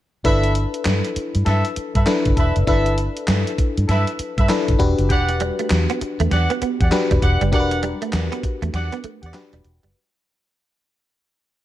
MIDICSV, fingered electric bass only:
0, 0, Header, 1, 3, 480
1, 0, Start_track
1, 0, Key_signature, 1, "major"
1, 0, Tempo, 606061
1, 198, Time_signature, 4, 2, 24, 8
1, 9220, End_track
2, 0, Start_track
2, 0, Title_t, "Fingered electric bass"
2, 0, Program_c, 0, 33
2, 199, Note_on_c, 0, 31, 112
2, 512, Note_off_c, 0, 31, 0
2, 682, Note_on_c, 0, 43, 81
2, 800, Note_off_c, 0, 43, 0
2, 1072, Note_on_c, 0, 43, 86
2, 1143, Note_off_c, 0, 43, 0
2, 1162, Note_on_c, 0, 43, 103
2, 1281, Note_off_c, 0, 43, 0
2, 1549, Note_on_c, 0, 43, 100
2, 1621, Note_off_c, 0, 43, 0
2, 1791, Note_on_c, 0, 31, 94
2, 1863, Note_off_c, 0, 31, 0
2, 1878, Note_on_c, 0, 28, 72
2, 1998, Note_off_c, 0, 28, 0
2, 2032, Note_on_c, 0, 30, 85
2, 2103, Note_off_c, 0, 30, 0
2, 2119, Note_on_c, 0, 31, 102
2, 2432, Note_off_c, 0, 31, 0
2, 2601, Note_on_c, 0, 43, 93
2, 2720, Note_off_c, 0, 43, 0
2, 2992, Note_on_c, 0, 43, 91
2, 3063, Note_off_c, 0, 43, 0
2, 3080, Note_on_c, 0, 43, 106
2, 3199, Note_off_c, 0, 43, 0
2, 3471, Note_on_c, 0, 43, 92
2, 3542, Note_off_c, 0, 43, 0
2, 3712, Note_on_c, 0, 31, 88
2, 3783, Note_off_c, 0, 31, 0
2, 3801, Note_on_c, 0, 28, 91
2, 3920, Note_off_c, 0, 28, 0
2, 3952, Note_on_c, 0, 30, 96
2, 4042, Note_off_c, 0, 30, 0
2, 4042, Note_on_c, 0, 28, 99
2, 4354, Note_off_c, 0, 28, 0
2, 4523, Note_on_c, 0, 40, 93
2, 4641, Note_off_c, 0, 40, 0
2, 4911, Note_on_c, 0, 40, 89
2, 4983, Note_off_c, 0, 40, 0
2, 5003, Note_on_c, 0, 40, 87
2, 5121, Note_off_c, 0, 40, 0
2, 5392, Note_on_c, 0, 40, 97
2, 5463, Note_off_c, 0, 40, 0
2, 5634, Note_on_c, 0, 28, 92
2, 5704, Note_off_c, 0, 28, 0
2, 5723, Note_on_c, 0, 28, 92
2, 5841, Note_off_c, 0, 28, 0
2, 5872, Note_on_c, 0, 30, 94
2, 5964, Note_off_c, 0, 30, 0
2, 5964, Note_on_c, 0, 28, 106
2, 6275, Note_off_c, 0, 28, 0
2, 6441, Note_on_c, 0, 40, 89
2, 6560, Note_off_c, 0, 40, 0
2, 6830, Note_on_c, 0, 40, 93
2, 6902, Note_off_c, 0, 40, 0
2, 6919, Note_on_c, 0, 40, 95
2, 7039, Note_off_c, 0, 40, 0
2, 7309, Note_on_c, 0, 40, 88
2, 7381, Note_off_c, 0, 40, 0
2, 7549, Note_on_c, 0, 28, 94
2, 7621, Note_off_c, 0, 28, 0
2, 7642, Note_on_c, 0, 28, 84
2, 7760, Note_off_c, 0, 28, 0
2, 7790, Note_on_c, 0, 30, 94
2, 7862, Note_off_c, 0, 30, 0
2, 9220, End_track
3, 0, Start_track
3, 0, Title_t, "Muted fingered electric bass strokes"
3, 922, Note_on_c, 9, 29, 50
3, 1001, Note_off_c, 9, 29, 0
3, 1403, Note_on_c, 9, 29, 48
3, 1482, Note_off_c, 9, 29, 0
3, 2841, Note_on_c, 9, 29, 50
3, 2920, Note_off_c, 9, 29, 0
3, 3322, Note_on_c, 9, 29, 46
3, 3401, Note_off_c, 9, 29, 0
3, 4765, Note_on_c, 9, 29, 45
3, 4844, Note_off_c, 9, 29, 0
3, 5243, Note_on_c, 9, 29, 49
3, 5323, Note_off_c, 9, 29, 0
3, 6682, Note_on_c, 9, 29, 44
3, 6761, Note_off_c, 9, 29, 0
3, 7160, Note_on_c, 9, 29, 47
3, 7239, Note_off_c, 9, 29, 0
3, 9220, End_track
0, 0, End_of_file